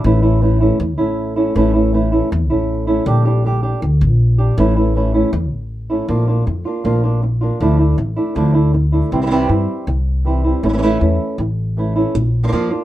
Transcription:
0.04 A1 E3 A3 C#4 E4
0.22 A3 C#4 E4
0.41 E3 A3 C#4 E4
0.60 A3 C#4 E4
0.80 E2, muted nylon-string guitar stroke
0.98 A1 A3 C#4 E4
1.36 A3 C#4 E4
1.55 A1 E3 A3 C#4 E4
1.74 A3 C#4 E4
1.93 E3 A3 C#4 E4
2.12 A3 C#4 E4
2.31 E2, muted nylon-string guitar stroke
2.50 A1 A3 C#4 E4
2.87 A3 C#4 E4
3.06 A#1 D3 G3 D4 G4
3.25 G3 D4 G4
3.44 D3 G3 D4 G4
3.63 G3 D4 G4
3.82 D2, muted nylon-string guitar stroke
4.01 A#1
4.38 G3 D4 G4
4.57 A1 E3 A3 C#4 E4
4.76 A3 C#4 E4
4.95 E3 A3 C#4 E4
5.14 A3 C#4 E4
5.33 E2, muted nylon-string guitar stroke
5.51 A1
5.90 A3 C#4 E4
6.08 A#1 F3 A#3 D4 F4
6.27 A#3 D4 F4
6.46 F2, muted nylon-string guitar stroke
6.65 A#3 D4 F4
6.84 A#1 F3 A#3 D4 F4
7.04 A#3 D4 F4
7.23 muted nylon-string guitar stroke
7.41 A#3 D4 F4
7.60 D2 D3 F3 A3 D4 E4
7.79 A3 D4 E4
7.98 A1, muted nylon-string guitar stroke
8.16 A3 D4 E4
8.35 D2 D3 F3 A3 D4 E4
8.54 A3 D4 E4
8.73 muted nylon-string guitar stroke
8.92 A3 D4 E4
9.11 C2 C3 E3 G3 C4 E4
9.22 E3 G3 C4 E4
9.26 E3 G3 C4 E4
9.31 C3 E3 G3 C4 E4
9.49 G2 G3 C4 E4
9.87 C2, muted nylon-string guitar stroke
10.25 E3 G3 C4 E4
10.44 G3 C4 E4
10.63 A1 E3 A3 C#4 E4
10.69 E3 A3 C#4 E4
10.73 E3 A3 C#4 E4
10.78 E3 A3 C#4 E4
10.82 E3 A3 C#4 E4
11.00 E2 A3 C#4 E4
11.38 A1, muted nylon-string guitar stroke
11.77 E3 A3 C#4 E4
11.96 A3 C#4 E4
12.15 A#1, muted nylon-string guitar stroke
12.43 F3 A#3 D4 F4
12.48 F3 A#3 D4 F4
12.52 F2 F3 A#3 D4 F4
12.71 A#3 D4 F4

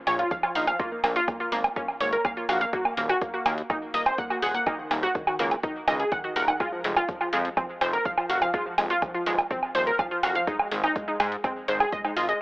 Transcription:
Already playing: impact
0.07 A#1 F3 C#5, open hi-hat, low woodblock
0.19 F4, closed hi-hat
0.31 F3 F5, kick, closed hi-hat
0.43 F3 F4, low woodblock
0.55 A#1 D#4 F5, open hi-hat
0.67 F3 F5, closed hi-hat, low woodblock
0.79 A#3 F4, kick, closed hi-hat
0.92 A#3
1.04 A#1 A#3, open hi-hat, low woodblock
1.16 F4, closed hi-hat
1.28 A#3, kick, closed hi-hat, low woodblock
1.40 A#3 F4
1.52 G#1 A#3, open hi-hat
1.64 closed hi-hat, low woodblock
1.76 A#3 C#4, kick, closed hi-hat
1.88 low woodblock
2.00 G#1 A#3 C#5, open hi-hat
2.13 A#4, closed hi-hat
2.25 A#3 F5, kick, closed hi-hat, low woodblock
2.37 A#3 F4
2.49 A#1 F#4 F5, open hi-hat, low woodblock
2.61 A#3 F5, closed hi-hat
2.73 A#3 F#4, kick, closed hi-hat
2.85 A#3, low woodblock
2.97 D#1 A#3, open hi-hat
3.09 F#4, closed hi-hat, low woodblock
3.21 A#3, kick, closed hi-hat
3.34 A#3 F#4
3.46 D#2 A#3, open hi-hat, low woodblock
3.58 closed hi-hat
3.70 A#3 D#4, kick, closed hi-hat, low woodblock
3.94 D#1 A#3 D#5, open hi-hat
4.06 C5, closed hi-hat, low woodblock
4.18 A#3 F#5, kick, closed hi-hat
4.30 A#3 F#4, low woodblock
4.42 D#1 G#4 F#5, open hi-hat
4.54 A#3 F#5, closed hi-hat
4.66 A#3 D#4, kick, closed hi-hat, low woodblock
4.79 D#3
4.91 D#1 D#3 A#3, open hi-hat, low woodblock
5.03 F#4, closed hi-hat
5.15 D#3, kick, closed hi-hat
5.27 D#3 F#4, low woodblock
5.39 C#2 D#3 A#3, open hi-hat
5.51 closed hi-hat, low woodblock
5.63 D#3 D#4, kick, closed hi-hat
5.88 C#2 D#3 D#5, open hi-hat, low woodblock
6.00 G#4, closed hi-hat
6.12 D#3 F#5, kick, closed hi-hat, low woodblock
6.24 D#3 F#4
6.36 D#1 A#4 F#5, open hi-hat
6.48 D#3 F#5, closed hi-hat, low woodblock
6.60 G#3 F4, kick, closed hi-hat, low woodblock
6.72 F3
6.84 F1 F3 G#3, open hi-hat
6.96 F4, closed hi-hat, low woodblock
7.09 F3, kick, closed hi-hat
7.21 F3 F4, low woodblock
7.33 F2 F3 G#3, open hi-hat
7.45 closed hi-hat
7.57 F3 C4, kick, closed hi-hat, low woodblock
7.81 F1 F3 C5, open hi-hat, low woodblock
7.93 A#4, closed hi-hat
8.05 F3 F5, kick, closed hi-hat
8.17 F3 F4, low woodblock
8.29 F1 F#4 F5, open hi-hat
8.42 F3 F5, closed hi-hat, low woodblock
8.54 G#3 F4, kick, closed hi-hat
8.66 F3
8.78 F1 F3 G#3, open hi-hat, low woodblock
8.90 F4, closed hi-hat
9.02 F3, kick, closed hi-hat, low woodblock
9.14 F3 F4
9.26 D#1 F3 G#3, open hi-hat
9.38 closed hi-hat, low woodblock
9.51 F3 C4, kick, closed hi-hat
9.63 low woodblock
9.75 D#1 F3 C5, open hi-hat
9.87 A#4, closed hi-hat
9.99 F3 F5, kick, closed hi-hat, low woodblock
10.11 F3 F4
10.23 F1 F#4 F5, open hi-hat, low woodblock
10.35 F3 F5, closed hi-hat
10.47 G#3 D#4, kick, closed hi-hat
10.59 G#3, low woodblock
10.71 G#1 G#3, open hi-hat
10.84 D#4, closed hi-hat, low woodblock
10.96 G#3, kick, closed hi-hat
11.08 G#3 D#4
11.20 G#2 G#3, open hi-hat, low woodblock
11.32 closed hi-hat
11.44 G#3 C4, kick, closed hi-hat, low woodblock
11.68 G#1 G#3 C5, open hi-hat
11.80 G#4, closed hi-hat, low woodblock
11.92 G#3 D#5, kick, closed hi-hat
12.04 G#3 D#4, low woodblock
12.16 G#1 F4 D#5, open hi-hat
12.29 G#3 D#5, closed hi-hat

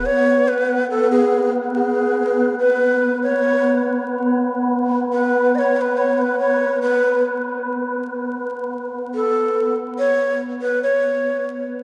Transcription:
Already playing: B3 B4
0.06 C#5
0.48 B4
0.90 A4
1.11 G#4
1.75 G#4
2.59 B4
3.22 C#5
5.13 B4
5.55 C#5 D#5
5.76 C#5
5.81 B4
5.97 C#5
6.18 B4 C#5
6.39 C#5
6.82 B4
9.14 A4
9.99 C#5
10.62 B4
10.83 C#5

